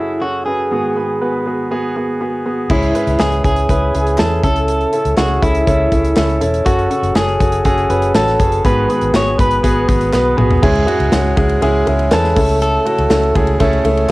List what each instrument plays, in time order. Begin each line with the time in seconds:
Already playing: grand piano F#2 C#3 C#4 F#4 G#4 A4, clean electric guitar E4
0.21 grand piano C#4 F#4 A4, clean electric guitar F#4
0.46 grand piano C#4 F#4 B4, clean electric guitar G#4
0.71 grand piano G#2 D#3 B3 F#4 G#4
0.96 grand piano B3 F#4 B4
1.21 grand piano B3 F#4 B4
1.46 grand piano B3 F#4 G#4
1.71 grand piano B3 F#4 G#4
1.96 grand piano B3 F#4 G#4
2.21 grand piano B3 F#4 G#4
2.46 grand piano B3 F#4 G#4
2.70 fingered electric bass C#2, grand piano G#2 C#4 E4 G#4, clean electric guitar E4, kick, crash
2.82 closed hi-hat
2.95 grand piano C#4 E4 B4, closed hi-hat
3.07 fingered electric bass C#2, closed hi-hat
3.19 fingered electric bass C#2, grand piano C#4 E4 G#4, clean electric guitar G#4, snare, clap
3.32 closed hi-hat
3.44 fingered electric bass C#2, grand piano C#4 E4 G#4, clean electric guitar G#4, kick, closed hi-hat
3.56 closed hi-hat
3.69 fingered electric bass C#2, grand piano C#4 E4 B4, kick, closed hi-hat
3.94 fingered electric bass C#2, grand piano C#4 E4 G#4, closed hi-hat
4.07 closed hi-hat
4.18 fingered electric bass E2, grand piano C#4 E4 G#4, clean electric guitar A4, snare, clap
4.43 fingered electric bass C#2, grand piano C#3 C#4 E4 A4, clean electric guitar A4, kick, closed hi-hat
4.56 closed hi-hat
4.68 closed hi-hat
4.81 closed hi-hat
4.93 grand piano C#4 E4 A4, closed hi-hat
5.05 fingered electric bass C#2, closed hi-hat
5.17 fingered electric bass C#2, grand piano C#4 E4 G#4, clean electric guitar F#4, snare, clap
5.42 fingered electric bass C#2, grand piano C#4 E4 A4, clean electric guitar E4, kick, closed hi-hat
5.55 closed hi-hat
5.67 fingered electric bass C#2, grand piano C#4 E4 A4, kick, closed hi-hat
5.91 fingered electric bass C#2, grand piano C#4 E4 A4, kick, closed hi-hat
6.04 closed hi-hat
6.16 fingered electric bass C#2, grand piano C#4 E4 A4, snare, clap
6.29 closed hi-hat
6.41 fingered electric bass E1, grand piano C#4 E4 A4, closed hi-hat
6.54 closed hi-hat
6.66 fingered electric bass F#1, grand piano C#3 C#4 F#4 A4, clean electric guitar F#4, kick, closed hi-hat
6.79 closed hi-hat
6.90 grand piano C#4 F#4 A4, closed hi-hat
7.02 fingered electric bass F#1, closed hi-hat
7.15 grand piano C#4 F#4 A4, clean electric guitar G#4, snare, clap
7.28 closed hi-hat
7.40 fingered electric bass F#1, grand piano C#4 F#4 A4, kick, closed hi-hat
7.52 closed hi-hat
7.65 fingered electric bass F#1, grand piano C#4 F#4 A4, clean electric guitar G#4, kick, closed hi-hat
7.78 closed hi-hat
7.90 fingered electric bass F#1, grand piano C#4 F#4 B4, closed hi-hat
8.02 closed hi-hat
8.14 fingered electric bass A1, grand piano C#4 F#4 A4, clean electric guitar A4, snare, clap
8.27 snare, closed hi-hat
8.39 fingered electric bass F#1, grand piano C#4 F#4 G#4, kick, closed hi-hat
8.52 closed hi-hat
8.64 fingered electric bass G#1, grand piano G#2 D#3 B3 F#4 G#4, clean electric guitar B4, kick, closed hi-hat
8.89 grand piano B3 F#4 G#4, closed hi-hat
9.01 fingered electric bass G#1, closed hi-hat
9.14 fingered electric bass G#1, grand piano B3 F#4 G#4, clean electric guitar C#5, snare, clap
9.38 fingered electric bass G#1, grand piano B3 F#4 B4, clean electric guitar B4, kick, closed hi-hat
9.51 closed hi-hat
9.63 fingered electric bass G#1, grand piano B3 F#4 G#4, kick, closed hi-hat
9.88 fingered electric bass G#1, grand piano B3 F#4 G#4, kick, closed hi-hat
10.01 closed hi-hat
10.13 fingered electric bass B1, grand piano B3 F#4 B4, snare, clap
10.37 fingered electric bass B1, grand piano B3 F#4 G#4, mid tom
10.50 floor tom
10.62 fingered electric bass C#2, grand piano G#2 G#3 C#4 E4 G#4, kick, crash
10.75 ride
10.86 grand piano G#3 C#4 E4 F#4, ride
11.00 fingered electric bass C#2, ride
11.12 fingered electric bass C#2, grand piano G#3 C#4 E4 F#4, snare, clap, ride
11.37 fingered electric bass C#2, grand piano G#3 C#4 E4 G#4, kick, ride
11.49 ride
11.62 fingered electric bass C#2, grand piano G#3 C#4 E4 G#4, ride
11.87 fingered electric bass C#2, grand piano G#3 C#4 E4 G#4, ride
11.99 ride
12.11 fingered electric bass E2, grand piano G#3 C#4 E4 B4, clean electric guitar A4, snare, clap, ride
12.24 snare
12.36 fingered electric bass C#2, grand piano C#3 A3 C#4 E4 A4, kick, open hi-hat, ride
12.49 ride
12.62 clean electric guitar A4, hi-hat pedal, ride
12.85 grand piano A3 C#4 E4 F#4, ride
12.98 fingered electric bass C#2, ride
13.10 fingered electric bass C#2, grand piano A3 C#4 E4 A4, snare, clap, ride
13.23 ride
13.35 fingered electric bass C#2, grand piano A3 C#4 E4 G#4, kick, ride
13.47 ride
13.60 fingered electric bass C#2, grand piano A3 C#4 E4 A4, kick, ride
13.73 ride
13.84 fingered electric bass C#2, grand piano A3 C#4 E4 A4, ride
13.97 ride